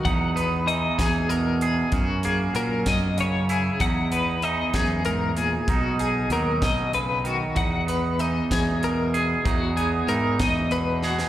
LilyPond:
<<
  \new Staff \with { instrumentName = "Clean electric guitar" } { \time 6/8 \key e \lydian \tempo 4. = 64 fis''8 b'8 dis''8 gis'8 ais'8 gis'8 | fis'8 gis'8 ais'8 dis''8 cis''8 gis'8 | fis''8 b'8 dis''8 gis'8 ais'8 gis'8 | fis'8 gis'8 ais'8 dis''8 b'8 fis'8 |
fis''8 b'8 dis''8 gis'8 ais'8 gis'8 | fis'8 gis'8 ais'8 dis''8 b'8 fis'8 | }
  \new Staff \with { instrumentName = "Clean electric guitar" } { \clef bass \time 6/8 \key e \lydian << { dis'8 b8 dis'4. gis'8 | cis'8 ais8 cis'4. e'8 | dis'8 b8 dis'2 | dis'4 dis'2 |
dis'8 b8 dis'4. gis'8 | dis'8 b8 dis'4. gis'8 | } \\ { e,4 e4 b,4 | fis,4 fis4 cis4 | e,4 e8 fis,8 gis,8 ais,8 | b,4 fis8 b,8 cis8 dis8 |
e,4 e4 b,4 | e,4 e4 b,4 | } >> }
  \new Staff \with { instrumentName = "Fingered electric bass" } { \clef bass \time 6/8 \key e \lydian e,4. e,4. | fis,4 ais,8 fis,4. | e,4. e,4. | b,,4 dis,8 b,,4. |
e,4. e,4. | e,4 gis,8 e,4. | }
  \new DrumStaff \with { instrumentName = "Drums" } \drummode { \time 6/8 <hh bd>8 hh8 hh8 <hh bd sn>8 hh8 hh8 | <hh bd>8 hh8 hh8 <hh bd sn>8 hh8 hh8 | <hh bd>8 hh8 hh8 <hh bd sn>8 hh8 hh8 | <hh bd>8 hh8 hh8 <hh bd sn>8 hh8 hh8 |
<hh bd>8 hh8 hh8 <hh bd sn>8 hh8 hh8 | <hh bd>8 hh8 hh8 <hh bd sn>8 hh8 sn16 sn16 | }
>>